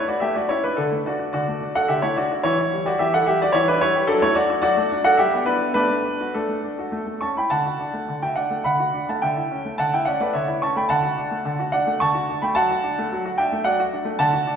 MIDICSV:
0, 0, Header, 1, 2, 480
1, 0, Start_track
1, 0, Key_signature, 2, "major"
1, 0, Tempo, 570342
1, 651, Time_signature, 3, 2, 24, 8
1, 1125, Tempo, 547945
1, 4485, Tempo, 586510
1, 6405, Tempo, 568720
1, 7845, Tempo, 555042
1, 10725, Tempo, 543971
1, 12496, End_track
2, 0, Start_track
2, 0, Title_t, "Grand piano"
2, 0, Program_c, 0, 0
2, 65, Note_on_c, 0, 74, 82
2, 73, Note_on_c, 0, 66, 58
2, 169, Note_on_c, 0, 76, 87
2, 173, Note_off_c, 0, 66, 0
2, 177, Note_off_c, 0, 74, 0
2, 181, Note_on_c, 0, 67, 65
2, 183, Note_on_c, 0, 57, 57
2, 287, Note_off_c, 0, 67, 0
2, 288, Note_off_c, 0, 57, 0
2, 289, Note_off_c, 0, 76, 0
2, 298, Note_on_c, 0, 74, 66
2, 300, Note_on_c, 0, 57, 37
2, 306, Note_on_c, 0, 66, 54
2, 411, Note_off_c, 0, 66, 0
2, 411, Note_on_c, 0, 73, 71
2, 415, Note_off_c, 0, 74, 0
2, 420, Note_on_c, 0, 61, 39
2, 422, Note_off_c, 0, 57, 0
2, 424, Note_on_c, 0, 64, 62
2, 528, Note_off_c, 0, 64, 0
2, 532, Note_off_c, 0, 73, 0
2, 536, Note_on_c, 0, 71, 76
2, 540, Note_on_c, 0, 64, 40
2, 542, Note_off_c, 0, 61, 0
2, 546, Note_on_c, 0, 62, 54
2, 641, Note_off_c, 0, 62, 0
2, 645, Note_on_c, 0, 69, 77
2, 653, Note_on_c, 0, 62, 62
2, 654, Note_off_c, 0, 71, 0
2, 654, Note_on_c, 0, 50, 56
2, 656, Note_off_c, 0, 64, 0
2, 769, Note_off_c, 0, 50, 0
2, 772, Note_on_c, 0, 57, 41
2, 790, Note_off_c, 0, 69, 0
2, 874, Note_off_c, 0, 62, 0
2, 893, Note_on_c, 0, 74, 69
2, 896, Note_off_c, 0, 57, 0
2, 898, Note_on_c, 0, 62, 46
2, 902, Note_on_c, 0, 66, 60
2, 992, Note_off_c, 0, 66, 0
2, 1005, Note_on_c, 0, 66, 46
2, 1018, Note_off_c, 0, 62, 0
2, 1104, Note_off_c, 0, 74, 0
2, 1113, Note_off_c, 0, 66, 0
2, 1117, Note_on_c, 0, 74, 81
2, 1125, Note_on_c, 0, 50, 55
2, 1125, Note_on_c, 0, 66, 65
2, 1243, Note_off_c, 0, 50, 0
2, 1250, Note_on_c, 0, 57, 42
2, 1367, Note_on_c, 0, 62, 47
2, 1376, Note_off_c, 0, 57, 0
2, 1450, Note_off_c, 0, 74, 0
2, 1464, Note_off_c, 0, 66, 0
2, 1490, Note_on_c, 0, 78, 91
2, 1491, Note_on_c, 0, 66, 49
2, 1494, Note_off_c, 0, 62, 0
2, 1499, Note_on_c, 0, 69, 68
2, 1603, Note_on_c, 0, 76, 92
2, 1607, Note_off_c, 0, 69, 0
2, 1609, Note_on_c, 0, 50, 57
2, 1609, Note_on_c, 0, 67, 66
2, 1610, Note_off_c, 0, 78, 0
2, 1616, Note_off_c, 0, 66, 0
2, 1721, Note_off_c, 0, 67, 0
2, 1725, Note_on_c, 0, 73, 78
2, 1726, Note_off_c, 0, 50, 0
2, 1726, Note_on_c, 0, 57, 41
2, 1727, Note_off_c, 0, 76, 0
2, 1739, Note_on_c, 0, 64, 63
2, 1847, Note_off_c, 0, 64, 0
2, 1848, Note_off_c, 0, 73, 0
2, 1851, Note_on_c, 0, 74, 82
2, 1854, Note_off_c, 0, 57, 0
2, 1859, Note_on_c, 0, 66, 65
2, 1861, Note_on_c, 0, 62, 50
2, 1971, Note_off_c, 0, 66, 0
2, 1982, Note_off_c, 0, 62, 0
2, 1984, Note_on_c, 0, 66, 49
2, 1995, Note_off_c, 0, 74, 0
2, 2087, Note_on_c, 0, 73, 99
2, 2096, Note_on_c, 0, 52, 62
2, 2097, Note_on_c, 0, 64, 72
2, 2098, Note_off_c, 0, 66, 0
2, 2210, Note_off_c, 0, 52, 0
2, 2211, Note_off_c, 0, 64, 0
2, 2224, Note_on_c, 0, 64, 49
2, 2342, Note_on_c, 0, 55, 46
2, 2344, Note_off_c, 0, 64, 0
2, 2449, Note_off_c, 0, 73, 0
2, 2455, Note_on_c, 0, 67, 53
2, 2460, Note_on_c, 0, 74, 84
2, 2462, Note_off_c, 0, 55, 0
2, 2473, Note_on_c, 0, 66, 70
2, 2569, Note_off_c, 0, 67, 0
2, 2573, Note_off_c, 0, 66, 0
2, 2574, Note_on_c, 0, 76, 106
2, 2575, Note_off_c, 0, 74, 0
2, 2581, Note_on_c, 0, 52, 54
2, 2582, Note_on_c, 0, 67, 76
2, 2687, Note_off_c, 0, 67, 0
2, 2691, Note_off_c, 0, 52, 0
2, 2691, Note_off_c, 0, 76, 0
2, 2700, Note_on_c, 0, 64, 55
2, 2703, Note_on_c, 0, 78, 92
2, 2709, Note_on_c, 0, 69, 78
2, 2810, Note_off_c, 0, 69, 0
2, 2814, Note_on_c, 0, 76, 96
2, 2815, Note_off_c, 0, 78, 0
2, 2819, Note_off_c, 0, 64, 0
2, 2821, Note_on_c, 0, 55, 51
2, 2825, Note_on_c, 0, 67, 73
2, 2927, Note_off_c, 0, 67, 0
2, 2929, Note_off_c, 0, 76, 0
2, 2938, Note_off_c, 0, 55, 0
2, 2946, Note_on_c, 0, 67, 55
2, 2950, Note_on_c, 0, 74, 106
2, 2962, Note_on_c, 0, 66, 68
2, 3041, Note_on_c, 0, 73, 101
2, 3055, Note_off_c, 0, 66, 0
2, 3056, Note_off_c, 0, 74, 0
2, 3059, Note_on_c, 0, 52, 60
2, 3060, Note_off_c, 0, 67, 0
2, 3060, Note_on_c, 0, 64, 79
2, 3160, Note_off_c, 0, 73, 0
2, 3162, Note_off_c, 0, 64, 0
2, 3166, Note_off_c, 0, 52, 0
2, 3176, Note_on_c, 0, 64, 57
2, 3178, Note_on_c, 0, 71, 89
2, 3186, Note_on_c, 0, 62, 72
2, 3284, Note_off_c, 0, 62, 0
2, 3287, Note_off_c, 0, 71, 0
2, 3291, Note_off_c, 0, 64, 0
2, 3294, Note_on_c, 0, 73, 110
2, 3302, Note_on_c, 0, 55, 55
2, 3305, Note_on_c, 0, 64, 76
2, 3414, Note_off_c, 0, 55, 0
2, 3419, Note_on_c, 0, 67, 56
2, 3498, Note_off_c, 0, 73, 0
2, 3511, Note_off_c, 0, 64, 0
2, 3522, Note_on_c, 0, 69, 117
2, 3525, Note_off_c, 0, 67, 0
2, 3529, Note_on_c, 0, 62, 87
2, 3532, Note_on_c, 0, 54, 79
2, 3632, Note_off_c, 0, 62, 0
2, 3636, Note_off_c, 0, 69, 0
2, 3638, Note_off_c, 0, 54, 0
2, 3650, Note_on_c, 0, 57, 52
2, 3652, Note_on_c, 0, 73, 100
2, 3662, Note_on_c, 0, 64, 70
2, 3759, Note_off_c, 0, 64, 0
2, 3761, Note_off_c, 0, 73, 0
2, 3761, Note_on_c, 0, 74, 109
2, 3766, Note_off_c, 0, 57, 0
2, 3771, Note_on_c, 0, 62, 54
2, 3774, Note_on_c, 0, 66, 80
2, 3883, Note_off_c, 0, 66, 0
2, 3887, Note_off_c, 0, 62, 0
2, 3896, Note_on_c, 0, 66, 59
2, 3973, Note_off_c, 0, 74, 0
2, 3995, Note_off_c, 0, 66, 0
2, 3999, Note_on_c, 0, 74, 123
2, 4006, Note_on_c, 0, 54, 72
2, 4008, Note_on_c, 0, 66, 86
2, 4117, Note_off_c, 0, 54, 0
2, 4134, Note_on_c, 0, 57, 60
2, 4252, Note_off_c, 0, 57, 0
2, 4261, Note_on_c, 0, 62, 65
2, 4328, Note_off_c, 0, 74, 0
2, 4343, Note_off_c, 0, 66, 0
2, 4372, Note_on_c, 0, 78, 112
2, 4373, Note_on_c, 0, 66, 71
2, 4379, Note_off_c, 0, 62, 0
2, 4387, Note_on_c, 0, 69, 87
2, 4486, Note_on_c, 0, 76, 95
2, 4490, Note_off_c, 0, 66, 0
2, 4490, Note_off_c, 0, 69, 0
2, 4490, Note_off_c, 0, 78, 0
2, 4492, Note_on_c, 0, 55, 69
2, 4498, Note_on_c, 0, 67, 80
2, 4601, Note_off_c, 0, 55, 0
2, 4617, Note_on_c, 0, 59, 57
2, 4626, Note_off_c, 0, 76, 0
2, 4709, Note_off_c, 0, 67, 0
2, 4719, Note_on_c, 0, 71, 86
2, 4725, Note_on_c, 0, 64, 50
2, 4728, Note_on_c, 0, 62, 70
2, 4732, Note_off_c, 0, 59, 0
2, 4846, Note_off_c, 0, 64, 0
2, 4933, Note_off_c, 0, 71, 0
2, 4945, Note_off_c, 0, 62, 0
2, 4951, Note_on_c, 0, 71, 98
2, 4958, Note_on_c, 0, 57, 63
2, 4964, Note_on_c, 0, 62, 81
2, 5067, Note_off_c, 0, 57, 0
2, 5079, Note_on_c, 0, 57, 45
2, 5192, Note_off_c, 0, 62, 0
2, 5204, Note_on_c, 0, 62, 45
2, 5205, Note_off_c, 0, 57, 0
2, 5327, Note_off_c, 0, 62, 0
2, 5330, Note_on_c, 0, 66, 50
2, 5436, Note_off_c, 0, 71, 0
2, 5443, Note_on_c, 0, 69, 65
2, 5449, Note_on_c, 0, 62, 54
2, 5450, Note_on_c, 0, 57, 52
2, 5451, Note_off_c, 0, 66, 0
2, 5551, Note_off_c, 0, 57, 0
2, 5563, Note_on_c, 0, 57, 43
2, 5673, Note_off_c, 0, 62, 0
2, 5685, Note_on_c, 0, 62, 42
2, 5688, Note_off_c, 0, 57, 0
2, 5806, Note_on_c, 0, 66, 44
2, 5809, Note_off_c, 0, 62, 0
2, 5915, Note_on_c, 0, 57, 55
2, 5923, Note_off_c, 0, 66, 0
2, 6023, Note_off_c, 0, 57, 0
2, 6035, Note_on_c, 0, 57, 43
2, 6150, Note_on_c, 0, 85, 71
2, 6157, Note_on_c, 0, 61, 44
2, 6159, Note_on_c, 0, 81, 54
2, 6165, Note_off_c, 0, 69, 0
2, 6166, Note_off_c, 0, 57, 0
2, 6273, Note_off_c, 0, 81, 0
2, 6277, Note_off_c, 0, 85, 0
2, 6283, Note_on_c, 0, 64, 43
2, 6286, Note_on_c, 0, 83, 73
2, 6287, Note_off_c, 0, 61, 0
2, 6297, Note_on_c, 0, 79, 51
2, 6390, Note_on_c, 0, 81, 81
2, 6396, Note_on_c, 0, 50, 48
2, 6396, Note_on_c, 0, 78, 56
2, 6401, Note_off_c, 0, 79, 0
2, 6402, Note_off_c, 0, 64, 0
2, 6404, Note_off_c, 0, 83, 0
2, 6517, Note_off_c, 0, 50, 0
2, 6526, Note_on_c, 0, 66, 40
2, 6642, Note_on_c, 0, 62, 39
2, 6653, Note_off_c, 0, 66, 0
2, 6757, Note_on_c, 0, 57, 39
2, 6771, Note_off_c, 0, 62, 0
2, 6883, Note_on_c, 0, 50, 41
2, 6887, Note_off_c, 0, 57, 0
2, 6968, Note_off_c, 0, 78, 0
2, 6998, Note_off_c, 0, 81, 0
2, 7000, Note_off_c, 0, 50, 0
2, 7001, Note_on_c, 0, 66, 41
2, 7001, Note_on_c, 0, 79, 72
2, 7016, Note_on_c, 0, 76, 55
2, 7111, Note_on_c, 0, 78, 66
2, 7119, Note_on_c, 0, 74, 46
2, 7121, Note_off_c, 0, 76, 0
2, 7122, Note_off_c, 0, 79, 0
2, 7122, Note_on_c, 0, 62, 35
2, 7128, Note_off_c, 0, 66, 0
2, 7238, Note_on_c, 0, 57, 41
2, 7248, Note_off_c, 0, 62, 0
2, 7344, Note_off_c, 0, 74, 0
2, 7352, Note_off_c, 0, 78, 0
2, 7353, Note_on_c, 0, 83, 88
2, 7361, Note_on_c, 0, 50, 46
2, 7365, Note_on_c, 0, 78, 68
2, 7366, Note_off_c, 0, 57, 0
2, 7479, Note_off_c, 0, 50, 0
2, 7484, Note_on_c, 0, 66, 42
2, 7604, Note_on_c, 0, 62, 39
2, 7610, Note_off_c, 0, 66, 0
2, 7699, Note_off_c, 0, 78, 0
2, 7719, Note_off_c, 0, 83, 0
2, 7730, Note_off_c, 0, 62, 0
2, 7732, Note_on_c, 0, 57, 37
2, 7732, Note_on_c, 0, 81, 56
2, 7738, Note_on_c, 0, 78, 42
2, 7840, Note_on_c, 0, 79, 81
2, 7842, Note_off_c, 0, 78, 0
2, 7846, Note_on_c, 0, 76, 61
2, 7847, Note_off_c, 0, 57, 0
2, 7847, Note_off_c, 0, 81, 0
2, 7849, Note_on_c, 0, 50, 56
2, 7963, Note_off_c, 0, 50, 0
2, 7964, Note_on_c, 0, 64, 40
2, 8091, Note_off_c, 0, 64, 0
2, 8096, Note_on_c, 0, 61, 42
2, 8214, Note_on_c, 0, 57, 42
2, 8216, Note_off_c, 0, 61, 0
2, 8289, Note_off_c, 0, 79, 0
2, 8293, Note_off_c, 0, 76, 0
2, 8326, Note_on_c, 0, 81, 85
2, 8335, Note_off_c, 0, 57, 0
2, 8338, Note_on_c, 0, 50, 50
2, 8338, Note_on_c, 0, 78, 73
2, 8443, Note_off_c, 0, 78, 0
2, 8445, Note_off_c, 0, 81, 0
2, 8448, Note_off_c, 0, 50, 0
2, 8461, Note_on_c, 0, 64, 46
2, 8462, Note_on_c, 0, 79, 79
2, 8469, Note_on_c, 0, 76, 62
2, 8561, Note_on_c, 0, 78, 74
2, 8569, Note_off_c, 0, 76, 0
2, 8573, Note_on_c, 0, 61, 46
2, 8574, Note_off_c, 0, 79, 0
2, 8577, Note_on_c, 0, 74, 56
2, 8579, Note_off_c, 0, 64, 0
2, 8679, Note_off_c, 0, 74, 0
2, 8683, Note_off_c, 0, 78, 0
2, 8691, Note_on_c, 0, 57, 44
2, 8692, Note_on_c, 0, 74, 78
2, 8695, Note_off_c, 0, 61, 0
2, 8704, Note_on_c, 0, 71, 57
2, 8804, Note_on_c, 0, 76, 78
2, 8807, Note_off_c, 0, 71, 0
2, 8809, Note_off_c, 0, 74, 0
2, 8814, Note_on_c, 0, 50, 51
2, 8815, Note_off_c, 0, 57, 0
2, 8815, Note_on_c, 0, 73, 55
2, 8928, Note_off_c, 0, 50, 0
2, 8930, Note_on_c, 0, 64, 40
2, 9023, Note_off_c, 0, 76, 0
2, 9036, Note_off_c, 0, 73, 0
2, 9052, Note_on_c, 0, 85, 87
2, 9056, Note_off_c, 0, 64, 0
2, 9057, Note_on_c, 0, 61, 46
2, 9060, Note_on_c, 0, 81, 60
2, 9167, Note_off_c, 0, 81, 0
2, 9171, Note_off_c, 0, 85, 0
2, 9174, Note_on_c, 0, 57, 42
2, 9178, Note_on_c, 0, 83, 80
2, 9180, Note_off_c, 0, 61, 0
2, 9184, Note_on_c, 0, 79, 60
2, 9284, Note_on_c, 0, 81, 93
2, 9290, Note_off_c, 0, 79, 0
2, 9292, Note_off_c, 0, 57, 0
2, 9293, Note_on_c, 0, 50, 61
2, 9294, Note_off_c, 0, 83, 0
2, 9294, Note_on_c, 0, 78, 72
2, 9403, Note_on_c, 0, 66, 39
2, 9408, Note_off_c, 0, 50, 0
2, 9529, Note_on_c, 0, 62, 47
2, 9531, Note_off_c, 0, 66, 0
2, 9650, Note_on_c, 0, 57, 42
2, 9653, Note_off_c, 0, 62, 0
2, 9771, Note_on_c, 0, 50, 60
2, 9773, Note_off_c, 0, 57, 0
2, 9883, Note_off_c, 0, 50, 0
2, 9896, Note_on_c, 0, 66, 54
2, 9970, Note_off_c, 0, 78, 0
2, 10000, Note_off_c, 0, 81, 0
2, 10004, Note_on_c, 0, 78, 84
2, 10015, Note_off_c, 0, 66, 0
2, 10015, Note_on_c, 0, 62, 48
2, 10016, Note_on_c, 0, 74, 65
2, 10131, Note_on_c, 0, 57, 49
2, 10134, Note_off_c, 0, 62, 0
2, 10219, Note_off_c, 0, 78, 0
2, 10233, Note_off_c, 0, 74, 0
2, 10247, Note_on_c, 0, 85, 102
2, 10253, Note_off_c, 0, 57, 0
2, 10256, Note_on_c, 0, 81, 86
2, 10260, Note_on_c, 0, 50, 56
2, 10368, Note_off_c, 0, 50, 0
2, 10372, Note_on_c, 0, 66, 48
2, 10493, Note_on_c, 0, 62, 48
2, 10494, Note_off_c, 0, 66, 0
2, 10586, Note_off_c, 0, 81, 0
2, 10606, Note_off_c, 0, 85, 0
2, 10606, Note_on_c, 0, 83, 82
2, 10611, Note_on_c, 0, 57, 47
2, 10615, Note_off_c, 0, 62, 0
2, 10622, Note_on_c, 0, 79, 58
2, 10719, Note_on_c, 0, 81, 110
2, 10725, Note_off_c, 0, 79, 0
2, 10725, Note_off_c, 0, 83, 0
2, 10727, Note_off_c, 0, 57, 0
2, 10728, Note_on_c, 0, 54, 65
2, 10730, Note_on_c, 0, 78, 79
2, 10844, Note_off_c, 0, 54, 0
2, 10859, Note_on_c, 0, 66, 49
2, 10972, Note_on_c, 0, 62, 54
2, 10979, Note_off_c, 0, 66, 0
2, 11095, Note_off_c, 0, 62, 0
2, 11104, Note_on_c, 0, 57, 52
2, 11156, Note_off_c, 0, 81, 0
2, 11222, Note_off_c, 0, 57, 0
2, 11226, Note_on_c, 0, 54, 67
2, 11334, Note_off_c, 0, 54, 0
2, 11342, Note_on_c, 0, 66, 57
2, 11417, Note_off_c, 0, 78, 0
2, 11451, Note_on_c, 0, 79, 94
2, 11462, Note_off_c, 0, 66, 0
2, 11462, Note_on_c, 0, 62, 58
2, 11466, Note_on_c, 0, 76, 66
2, 11580, Note_on_c, 0, 57, 54
2, 11582, Note_off_c, 0, 62, 0
2, 11595, Note_off_c, 0, 79, 0
2, 11681, Note_off_c, 0, 76, 0
2, 11686, Note_on_c, 0, 78, 94
2, 11692, Note_on_c, 0, 54, 64
2, 11694, Note_on_c, 0, 74, 72
2, 11701, Note_off_c, 0, 57, 0
2, 11806, Note_off_c, 0, 54, 0
2, 11821, Note_on_c, 0, 66, 58
2, 11829, Note_off_c, 0, 78, 0
2, 11912, Note_off_c, 0, 74, 0
2, 11939, Note_off_c, 0, 66, 0
2, 11941, Note_on_c, 0, 62, 54
2, 12043, Note_on_c, 0, 57, 57
2, 12058, Note_off_c, 0, 62, 0
2, 12162, Note_off_c, 0, 57, 0
2, 12167, Note_on_c, 0, 81, 111
2, 12170, Note_on_c, 0, 50, 76
2, 12174, Note_on_c, 0, 78, 74
2, 12283, Note_off_c, 0, 50, 0
2, 12295, Note_on_c, 0, 66, 50
2, 12415, Note_off_c, 0, 66, 0
2, 12416, Note_on_c, 0, 62, 53
2, 12496, Note_off_c, 0, 62, 0
2, 12496, Note_off_c, 0, 78, 0
2, 12496, Note_off_c, 0, 81, 0
2, 12496, End_track
0, 0, End_of_file